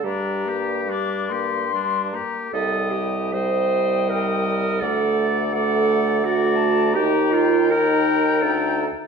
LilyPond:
<<
  \new Staff \with { instrumentName = "Flute" } { \time 3/4 \key c \dorian \tempo 4 = 82 bes''4 d'''8 c'''4 bes''8 | g''4 g''2 | fis''4 fis''4 fis''8 a''8 | bes''4 bes''4. r8 | }
  \new Staff \with { instrumentName = "Oboe" } { \time 3/4 \key c \dorian d'8 g'8 d'8 g'8 d'8 g'8 | ees''4 ees''2 | d''4 d''4 d''4 | g''4 g''4. r8 | }
  \new Staff \with { instrumentName = "Clarinet" } { \time 3/4 \key c \dorian g'2 r4 | a'8 g'8 c''4 bes'4 | a'4 a'4 fis'4 | g'8 f'8 bes'4 a'8 r8 | }
  \new Staff \with { instrumentName = "French horn" } { \time 3/4 \key c \dorian g8 bes8 g8 bes8 g8 bes8 | g4 g2 | a4 a4 a4 | ees'4 ees'4. r8 | }
  \new Staff \with { instrumentName = "Bassoon" } { \clef bass \time 3/4 \key c \dorian g,2~ g,8 r8 | c,2. | d,2. | ees,2 d,8 r8 | }
>>